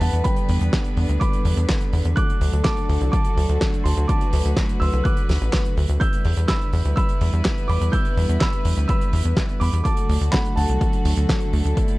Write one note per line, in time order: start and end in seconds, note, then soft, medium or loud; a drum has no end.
0.00 0.10 E2 medium
0.00 9.81 D3 medium
0.00 2.13 G3 medium
0.00 2.13 B3 medium
0.00 0.23 E4 medium
0.00 2.13 B4 medium
0.00 0.24 F#5 medium
0.00 0.25 A5 medium
0.00 open hi-hat loud
0.13 0.22 E2 medium
0.13 closed hi-hat medium
0.24 2.15 D4 medium
0.24 1.17 G5 medium
0.24 1.20 B5 medium
0.24 kick loud
0.24 closed hi-hat medium
0.36 closed hi-hat medium
0.49 0.58 E2 loud
0.49 open hi-hat loud
0.61 0.70 E2 medium
0.61 closed hi-hat medium
0.73 kick loud
0.73 snare loud
0.73 clap loud
0.73 closed hi-hat medium
0.85 closed hi-hat medium
0.97 1.06 E2 loud
0.97 open hi-hat loud
1.09 1.18 D2 medium
1.09 closed hi-hat soft
1.20 1.89 B5 medium
1.20 1.88 D6 medium
1.20 kick loud
1.20 closed hi-hat medium
1.33 closed hi-hat medium
1.45 1.54 E2 medium
1.45 open hi-hat loud
1.57 1.66 E2 medium
1.57 closed hi-hat medium
1.69 kick loud
1.69 snare loud
1.69 clap loud
1.69 closed hi-hat medium
1.81 closed hi-hat medium
1.93 2.02 E2 medium
1.93 open hi-hat loud
2.05 2.14 E2 medium
2.05 closed hi-hat medium
2.16 5.97 F#3 medium
2.16 5.97 A3 medium
2.16 5.97 F#4 medium
2.16 4.07 A4 medium
2.16 2.62 D6 medium
2.16 2.66 F#6 loud
2.16 kick loud
2.16 closed hi-hat medium
2.30 closed hi-hat medium
2.41 2.50 D2 loud
2.41 open hi-hat loud
2.53 2.62 D2 medium
2.53 closed hi-hat medium
2.64 3.10 A5 medium
2.64 3.10 D6 loud
2.64 kick loud
2.64 snare loud
2.64 clap loud
2.64 closed hi-hat medium
2.77 closed hi-hat medium
2.89 2.98 D2 medium
2.89 open hi-hat loud
3.01 3.10 C2 medium
3.01 closed hi-hat medium
3.12 3.81 A5 medium
3.12 3.87 D6 loud
3.12 kick loud
3.12 closed hi-hat medium
3.25 closed hi-hat medium
3.37 3.46 D2 loud
3.37 open hi-hat loud
3.49 3.58 D2 medium
3.49 closed hi-hat medium
3.61 kick loud
3.61 snare loud
3.61 clap loud
3.61 closed hi-hat medium
3.74 closed hi-hat medium
3.84 3.94 D2 loud
3.84 4.08 A5 medium
3.84 4.09 C6 medium
3.84 open hi-hat loud
3.97 4.06 D2 medium
3.97 closed hi-hat medium
4.08 5.99 B4 medium
4.08 4.78 A5 medium
4.08 4.76 D6 medium
4.08 kick loud
4.08 closed hi-hat medium
4.21 closed hi-hat medium
4.33 4.42 D2 loud
4.33 open hi-hat loud
4.45 4.54 D2 medium
4.45 closed hi-hat medium
4.57 kick loud
4.57 snare loud
4.57 clap loud
4.57 closed hi-hat medium
4.69 closed hi-hat medium
4.80 4.90 D2 loud
4.80 5.04 C6 medium
4.80 5.03 E6 loud
4.80 open hi-hat medium
4.93 5.02 C2 medium
4.93 closed hi-hat soft
5.04 5.73 D6 medium
5.04 5.72 F#6 medium
5.04 kick loud
5.04 closed hi-hat medium
5.17 closed hi-hat medium
5.29 5.38 D2 loud
5.29 snare medium
5.29 open hi-hat loud
5.41 5.50 A1 medium
5.41 closed hi-hat medium
5.53 kick loud
5.53 snare loud
5.53 clap loud
5.53 closed hi-hat medium
5.65 closed hi-hat medium
5.77 5.86 D2 medium
5.77 open hi-hat loud
5.89 5.98 D2 medium
5.89 closed hi-hat medium
6.00 9.81 G3 medium
6.00 9.81 B3 medium
6.00 9.81 E4 medium
6.00 9.81 B4 medium
6.00 6.46 E6 medium
6.00 6.45 G6 loud
6.00 kick loud
6.00 closed hi-hat medium
6.13 closed hi-hat medium
6.25 6.34 E2 loud
6.25 open hi-hat loud
6.37 6.46 E2 medium
6.37 closed hi-hat medium
6.48 6.94 B5 medium
6.48 6.94 E6 loud
6.48 kick loud
6.48 snare loud
6.48 clap loud
6.48 closed hi-hat medium
6.61 closed hi-hat soft
6.73 6.82 E2 medium
6.73 open hi-hat loud
6.85 6.94 D2 medium
6.85 closed hi-hat medium
6.96 7.65 B5 medium
6.96 7.64 E6 loud
6.96 kick loud
6.96 closed hi-hat medium
7.09 closed hi-hat medium
7.21 7.30 E2 medium
7.21 open hi-hat loud
7.33 7.42 E2 medium
7.33 closed hi-hat medium
7.45 kick loud
7.45 snare loud
7.45 clap loud
7.45 closed hi-hat medium
7.58 closed hi-hat medium
7.68 7.78 E2 medium
7.68 7.92 B5 medium
7.68 7.93 D6 medium
7.68 open hi-hat loud
7.81 7.90 E2 medium
7.81 closed hi-hat medium
7.92 8.38 E6 medium
7.92 8.42 G6 loud
7.92 kick loud
7.92 closed hi-hat medium
8.05 closed hi-hat medium
8.17 8.26 E2 loud
8.17 open hi-hat loud
8.29 8.38 E2 medium
8.29 closed hi-hat medium
8.40 8.86 B5 medium
8.40 8.86 E6 loud
8.40 kick loud
8.40 snare loud
8.40 clap loud
8.40 closed hi-hat medium
8.53 closed hi-hat medium
8.65 8.74 E2 loud
8.65 open hi-hat loud
8.77 8.86 D2 medium
8.77 closed hi-hat medium
8.88 9.57 B5 medium
8.88 9.63 E6 loud
8.88 kick loud
8.88 closed hi-hat medium
9.01 closed hi-hat medium
9.13 9.22 E2 loud
9.13 open hi-hat loud
9.25 9.34 E2 medium
9.25 closed hi-hat medium
9.37 kick loud
9.37 snare loud
9.37 clap loud
9.37 closed hi-hat medium
9.49 closed hi-hat medium
9.60 9.70 E2 medium
9.60 9.84 B5 medium
9.60 9.82 D6 medium
9.60 open hi-hat loud
9.73 9.82 E2 medium
9.73 closed hi-hat medium
9.84 11.98 D3 medium
9.84 11.98 F#3 medium
9.84 11.98 A3 medium
9.84 11.75 F#4 medium
9.84 11.98 A4 medium
9.84 10.30 A5 medium
9.84 10.29 D6 loud
9.84 kick loud
9.84 closed hi-hat medium
9.97 closed hi-hat medium
10.09 10.18 D2 loud
10.09 open hi-hat loud
10.21 10.30 D2 medium
10.21 closed hi-hat medium
10.32 10.56 F#5 medium
10.32 10.55 B5 medium
10.32 kick loud
10.32 snare loud
10.32 clap loud
10.32 closed hi-hat medium
10.45 closed hi-hat medium
10.56 10.66 D2 medium
10.56 11.98 F#5 medium
10.56 11.98 A5 medium
10.56 open hi-hat loud
10.69 10.78 C2 medium
10.69 closed hi-hat medium
10.81 kick loud
10.81 closed hi-hat medium
10.93 closed hi-hat medium
11.05 11.14 D2 loud
11.05 open hi-hat loud
11.16 11.26 D2 medium
11.16 closed hi-hat medium
11.29 kick loud
11.29 snare loud
11.29 clap loud
11.29 closed hi-hat medium
11.40 closed hi-hat medium
11.53 11.62 D2 loud
11.53 open hi-hat loud
11.65 11.74 D2 medium
11.65 closed hi-hat medium
11.77 11.98 E4 medium
11.77 kick loud
11.77 closed hi-hat medium
11.88 closed hi-hat medium